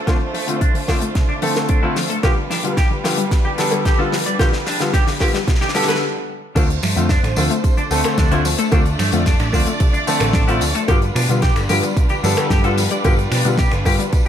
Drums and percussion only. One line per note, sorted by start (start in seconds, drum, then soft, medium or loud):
0.07 kick loud
0.07 snare medium
0.07 closed hi-hat medium
0.07 cowbell medium
0.35 open hi-hat loud
0.48 closed hi-hat medium
0.61 kick loud
0.61 closed hi-hat medium
0.75 open hi-hat medium
0.88 kick medium
0.88 snare medium
0.88 open hi-hat loud
0.88 cowbell medium
1.01 closed hi-hat medium
1.15 kick loud
1.15 snare medium
1.15 closed hi-hat medium
1.42 open hi-hat loud
1.55 snare medium
1.55 closed hi-hat medium
1.55 cowbell medium
1.69 kick loud
1.69 closed hi-hat medium
1.96 snare medium
1.96 open hi-hat loud
2.10 closed hi-hat medium
2.23 kick loud
2.23 snare medium
2.23 closed hi-hat medium
2.23 cowbell loud
2.51 snare medium
2.51 open hi-hat loud
2.65 closed hi-hat medium
2.77 kick loud
2.77 snare medium
2.77 closed hi-hat medium
3.04 snare medium
3.04 open hi-hat loud
3.04 cowbell medium
3.18 closed hi-hat medium
3.31 kick loud
3.31 snare medium
3.31 closed hi-hat medium
3.58 snare medium
3.58 open hi-hat loud
3.71 closed hi-hat medium
3.71 cowbell loud
3.85 kick loud
3.85 snare medium
3.85 closed hi-hat medium
4.12 snare medium
4.12 open hi-hat loud
4.26 closed hi-hat medium
4.39 kick loud
4.39 snare medium
4.39 closed hi-hat medium
4.39 cowbell loud
4.53 snare medium
4.67 snare medium
4.67 open hi-hat loud
4.80 snare medium
4.80 closed hi-hat medium
4.94 kick loud
4.94 snare loud
4.94 closed hi-hat medium
5.07 snare medium
5.07 open hi-hat medium
5.20 kick medium
5.20 snare medium
5.20 open hi-hat loud
5.20 cowbell medium
5.34 snare medium
5.34 closed hi-hat medium
5.48 kick loud
5.48 snare loud
5.48 closed hi-hat medium
5.55 snare medium
5.61 snare medium
5.69 snare medium
5.75 snare loud
5.75 open hi-hat loud
5.82 snare loud
5.88 snare medium
5.88 closed hi-hat medium
5.88 cowbell loud
5.95 snare loud
6.56 kick loud
6.56 closed hi-hat medium
6.56 tambourine soft
6.56 cowbell medium
6.56 crash medium
6.70 closed hi-hat soft
6.70 tambourine soft
6.83 finger snap medium
6.83 open hi-hat loud
6.83 tambourine medium
6.97 closed hi-hat medium
6.97 tambourine soft
7.09 kick loud
7.09 snare loud
7.09 closed hi-hat medium
7.09 tambourine soft
7.24 finger snap medium
7.24 closed hi-hat soft
7.24 tambourine soft
7.36 open hi-hat loud
7.36 tambourine medium
7.36 cowbell medium
7.51 closed hi-hat medium
7.51 tambourine soft
7.64 kick loud
7.64 closed hi-hat medium
7.64 tambourine soft
7.77 closed hi-hat soft
7.77 tambourine soft
7.91 open hi-hat loud
7.91 tambourine medium
8.04 finger snap medium
8.04 closed hi-hat medium
8.04 tambourine soft
8.04 cowbell medium
8.18 kick loud
8.18 snare loud
8.18 closed hi-hat medium
8.18 tambourine soft
8.31 closed hi-hat soft
8.31 tambourine soft
8.45 open hi-hat loud
8.45 tambourine medium
8.59 closed hi-hat medium
8.59 tambourine soft
8.72 kick loud
8.72 closed hi-hat medium
8.72 tambourine soft
8.72 cowbell loud
8.85 closed hi-hat soft
8.85 tambourine soft
8.99 finger snap medium
8.99 open hi-hat loud
8.99 tambourine medium
9.12 closed hi-hat medium
9.12 tambourine soft
9.26 kick loud
9.26 snare loud
9.26 closed hi-hat medium
9.26 tambourine soft
9.39 finger snap medium
9.39 closed hi-hat soft
9.39 tambourine soft
9.53 kick medium
9.53 open hi-hat loud
9.53 tambourine medium
9.53 cowbell medium
9.67 closed hi-hat medium
9.67 tambourine soft
9.80 kick loud
9.80 closed hi-hat medium
9.80 tambourine soft
9.94 closed hi-hat soft
9.94 tambourine soft
10.07 open hi-hat loud
10.07 tambourine medium
10.20 finger snap medium
10.20 closed hi-hat medium
10.20 tambourine soft
10.20 cowbell medium
10.33 kick loud
10.33 snare loud
10.33 closed hi-hat medium
10.33 tambourine soft
10.48 closed hi-hat soft
10.48 tambourine soft
10.61 open hi-hat loud
10.61 tambourine medium
10.75 closed hi-hat medium
10.75 tambourine soft
10.88 kick loud
10.88 closed hi-hat medium
10.88 tambourine soft
10.88 cowbell loud
11.02 closed hi-hat soft
11.02 tambourine soft
11.16 finger snap medium
11.16 open hi-hat loud
11.16 tambourine medium
11.29 closed hi-hat medium
11.29 tambourine soft
11.42 kick loud
11.42 snare loud
11.42 closed hi-hat medium
11.42 tambourine soft
11.56 finger snap medium
11.56 closed hi-hat soft
11.56 tambourine soft
11.69 open hi-hat loud
11.69 tambourine medium
11.69 cowbell medium
11.83 closed hi-hat medium
11.83 tambourine soft
11.97 kick loud
11.97 closed hi-hat medium
11.97 tambourine soft
12.09 closed hi-hat soft
12.09 tambourine soft
12.24 open hi-hat loud
12.24 tambourine medium
12.37 finger snap medium
12.37 closed hi-hat medium
12.37 tambourine soft
12.37 cowbell loud
12.50 kick loud
12.50 snare loud
12.50 closed hi-hat medium
12.50 tambourine soft
12.64 closed hi-hat soft
12.64 tambourine soft
12.78 open hi-hat loud
12.78 tambourine medium
12.90 closed hi-hat medium
12.90 tambourine soft
13.04 kick loud
13.04 closed hi-hat medium
13.04 tambourine soft
13.04 cowbell loud
13.18 closed hi-hat soft
13.18 tambourine soft
13.32 finger snap medium
13.32 open hi-hat loud
13.32 tambourine medium
13.45 closed hi-hat medium
13.45 tambourine soft
13.58 kick loud
13.58 snare loud
13.58 closed hi-hat medium
13.58 tambourine soft
13.72 finger snap medium
13.72 closed hi-hat soft
13.72 tambourine soft
13.85 kick medium
13.85 open hi-hat loud
13.85 tambourine medium
13.85 cowbell medium
14.00 closed hi-hat medium
14.00 tambourine soft
14.13 kick loud
14.13 closed hi-hat medium
14.13 tambourine soft